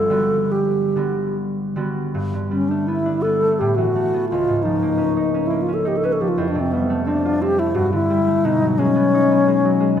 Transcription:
Already playing: G1 G2 A4
0.10 D3 G3 B3 F#4
0.52 G4
0.96 D3 G3 B3 F#4
1.76 D3 G3 B3 F#4
2.14 G2
2.33 D3
2.51 G3 C#4
2.69 A3 D4
2.87 B3 E4
3.06 D4
3.22 B3 A4
3.42 A3
3.59 A2 G4
3.76 E3 F#4
3.95 A3
4.14 B3
4.29 C#2 F4
4.49 G#2
4.63 F3 D#4
4.82 A#3
4.98 C#4
5.16 D#4
5.34 C#4
5.47 A#3 E4
5.62 F4
5.68 C#4
5.74 A4
5.85 D#4 G4
5.97 A4
6.04 C#4 B4
6.13 A4
6.21 F3 G4
6.28 F4
6.38 F2 E4
6.49 D4
6.55 C3
6.61 C4
6.72 G3 B3
6.90 A3
7.06 C4 D4
7.25 F4
7.42 C4 G4
7.58 A3 E4
7.75 G2 F#4
7.92 D3 E4
8.10 G3
8.27 A3
8.45 B2 D#4
8.62 F#3
8.79 G#3 C#4
8.96 B3
9.14 D#4
9.31 B3
9.48 G#3
9.65 F#3
9.80 G#3
9.97 B3

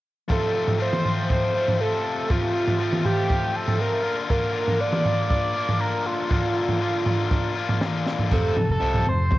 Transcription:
0.28 F2 C3 F3 A3 C4 F4 A4, kick, floor tom
0.53 F3 A3 C4 F4
0.67 floor tom
0.78 F3 A3 C4 F4
0.82 C5
0.93 mid tom
1.05 F3 A3 C4 F4, floor tom
1.30 C5, kick, floor tom
1.54 F3 A3 C4 F4
1.68 floor tom
1.78 F2 C3 F3 A3 C4 F4 A4
2.29 F2 C3 F3 A3 C4 F4, kick, floor tom
2.54 F3 A3 C4 F4
2.68 floor tom
2.78 F3 A3 C4 F4
2.82 F4
2.93 mid tom
3.03 F3 A3 C4 F4 G4, floor tom
3.30 kick, floor tom
3.54 F3 A3 C4 F4 A4
3.68 floor tom
3.78 F2 C3 F3 A3 C4 F4 A#4
4.02 A#2 D3 A#3 D4 F4
4.28 A#2 D3 A#3 D4 F4 A#4, kick, floor tom
4.53 A#3 D4 F4
4.68 floor tom
4.78 D3 A#3 D4 F4 D5
4.93 mid tom
5.04 A#3 D4 F4, floor tom
5.29 D5, kick, floor tom
5.54 A#3 D4 F4
5.69 floor tom
5.79 A#2 D3 A#3 D4 F4 A#4
6.06 F4
6.29 A#2 D3 A#3 D4 F4, kick, floor tom
6.55 A#3 D4 F4
6.69 floor tom
6.80 D3 A#3 D4 F4
7.05 A#3 D4 F4, floor tom
7.31 kick, floor tom
7.55 A#3 D4 F4
7.69 floor tom
7.81 A#2 D3 A#3 D4 F4, snare, mid tom
8.06 snare
8.19 floor tom
8.31 F1 F2 C3 F3 A4, kick, floor tom, crash
8.56 F2 C3, floor tom
8.69 F2 A4
8.80 C2 F2 C3 F3
8.94 floor tom
9.06 F2 C3 C5
9.31 F2 C3, kick, floor tom

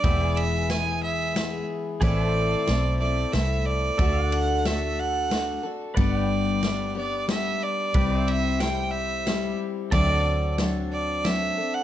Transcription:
Already playing: D5
0.04 E1 E3 G#3 B3 E4 G4 G#4 B4 E5, kick, ride
0.24 G#4
0.37 E5, ride
0.69 G#3 B3 E4 G#4 G#5, snare, ride
1.03 E5
1.34 G#3 B3 E4 G#4, snare, ride
2.00 A1 A2 E3 A3 C4 E4 G#4 A4 B4 D5 E5, kick, ride
2.21 A4 C5
2.67 B1 A3 C4 E4 A4, snare, ride
3.00 A3 C4 E4 A4 D5
3.32 C2 A3 C4 E4 E5, snare, ride
3.36 A4
3.66 D5
3.98 D2 D3 A3 D4 F#4 A4 D5 E5, kick, ride
4.24 F#5
4.32 F#5, ride
4.65 A3 D4 F#4 A4 E5, snare, ride
4.99 F#5
5.30 A3 D4 F#4 A4, snare, ride
5.63 D4 F#4 A4
5.95 G1 G2 D3 G3 B3 D4 B4 D5 F#5, kick, ride
5.99 G4 D5
6.17 G5
6.62 G3 B3 D4 G4, snare, ride
6.95 G3 B3 D4 G4 D5
7.27 G3 B3 D4 G4 E5, snare, ride
7.63 D5
7.94 C2 C3 G3 C4 E4 G4 B4 D5 G5, kick, ride
8.15 C5
8.20 E5
8.27 E5, ride
8.60 G3 C4 E4 G4 G5, snare, ride
8.91 E5
9.26 G3 C4 E4 G4, snare, ride
9.91 D2 D3 F#3 C4 D4 A4 D5 E5 G5, kick, ride
10.14 D5 F#5
10.58 F#3 C4 D4 A4, snare, ride
10.92 D5
11.24 F#3 C4 D4 A4 E5, snare, ride
11.58 C4 D4 A4
11.74 F#5

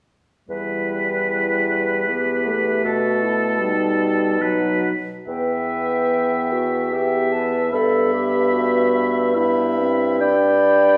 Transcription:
0.49 E2 G3 E4 B4
2.09 B3 G4
2.46 A3
2.84 B2 F#4 A4
3.23 E4
3.60 G3 D#4
4.41 F#3 D#4 B4
5.27 E2 B3 B4 E5 G5
6.53 F#4
6.93 B3 G4 E5 G5
7.32 B4 A5
7.72 G2 B3 A4 E5 B5
8.13 G4
8.53 F#4
9.35 B3 E4 E5 B5
9.78 C4
10.20 D4 D5 G5 B5

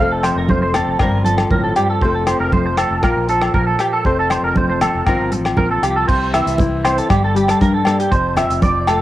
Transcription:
Already playing: F5
0.00 F1 F2 F3 A3 C4 A4
0.11 A4
0.23 F3 C5, cross-stick, closed hi-hat, muted conga, low agogo
0.36 F1 A#4
0.49 A3 C5, kick, high conga
0.62 C5
0.74 C4 A4, cross-stick, closed hi-hat, low conga, low agogo
0.87 F1
0.99 G1 G2 F3 C4 A#4, kick, cross-stick, muted conga, low agogo
1.03 F4
1.12 G1
1.25 F3 A4, closed hi-hat, high conga
1.38 cross-stick, low agogo
1.51 G1 A2 A#4, kick, muted conga, high conga, low conga
1.63 A4
1.76 G2 G4, closed hi-hat, low agogo
1.90 A4
2.01 F1 F2 F3 A3 C4 A4 C5, kick, muted conga
2.15 A4
2.27 F3 C5, cross-stick, closed hi-hat, muted conga, low agogo
2.40 F1 A#4
2.52 A3 C5, kick, high conga
2.66 C5
2.77 A4, muted nylon-string guitar stroke, cross-stick, closed hi-hat, low agogo
2.91 F1
3.03 A#1 A#2 F4 A#4, kick, cross-stick, muted conga, high conga, low agogo
3.17 A#1
3.29 F3 A4, closed hi-hat
3.42 cross-stick, low agogo
3.54 A#1 A#3 A#4, kick, muted conga, high conga
3.67 A4
3.79 G4, cross-stick, closed hi-hat, low agogo
3.93 A4
4.05 F1 F2 A4 C5, kick, muted conga
4.19 A4
4.30 F3 C5, cross-stick, closed hi-hat, muted conga, low agogo
4.43 F1 A#4
4.56 A3 C5, kick, high conga
4.70 C5
4.81 C4 A4, cross-stick, closed hi-hat, low conga, low agogo
4.95 F1
5.06 G1 F3 C4 F4 A#4, muted nylon-string guitar stroke, kick, cross-stick, muted conga, low agogo
5.20 G1
5.32 A1 F3, muted clean electric guitar stroke, closed hi-hat, high conga
5.45 cross-stick, low agogo
5.57 A#1 C4 A#4, kick, muted conga, high conga, low conga
5.71 A4
5.82 C2 F4 G4, closed hi-hat, low agogo
5.96 A4
6.08 C2 C3 C5, kick, crash, muted conga
6.33 E3 E5, cross-stick, closed hi-hat, muted conga, low agogo
6.46 C2, closed hi-hat
6.58 E4, kick, closed hi-hat, high conga
6.85 C4 C5, cross-stick, closed hi-hat, low agogo
6.98 A4, closed hi-hat
7.09 G1 G2 G4, kick, cross-stick, closed hi-hat, muted conga, high conga, low agogo
7.24 A4
7.35 G3 G4, closed hi-hat
7.48 A4, cross-stick, closed hi-hat, low agogo
7.61 G2 D4 A#4, kick, closed hi-hat, high conga
7.74 A4
7.85 G2 A#3 A4, cross-stick, closed hi-hat, muted conga, low agogo
8.00 G4, closed hi-hat
8.11 F1 F2 C5, kick, closed hi-hat, muted conga
8.37 F3 E5, cross-stick, closed hi-hat, muted conga, low conga, low agogo
8.50 F1, closed hi-hat
8.62 C4 D5, kick, closed hi-hat, high conga
8.87 A3 A4, cross-stick, closed hi-hat, low agogo

